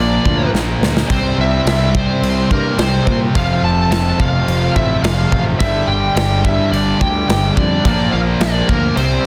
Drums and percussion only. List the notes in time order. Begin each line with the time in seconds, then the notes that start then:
0.25 kick
0.55 snare
0.83 snare
0.97 snare
1.10 kick, crash
1.67 snare, crash
1.95 kick
2.23 crash
2.51 kick
2.79 snare, crash
3.07 kick
3.35 kick, crash
3.92 snare, crash
4.20 kick
4.48 crash
4.76 kick
5.04 snare, crash
5.32 kick
5.60 kick, crash
6.17 snare, crash
6.45 kick
6.73 crash
7.01 kick
7.29 snare, crash
7.57 kick
7.85 kick, crash
8.41 snare, crash
8.69 kick
8.97 crash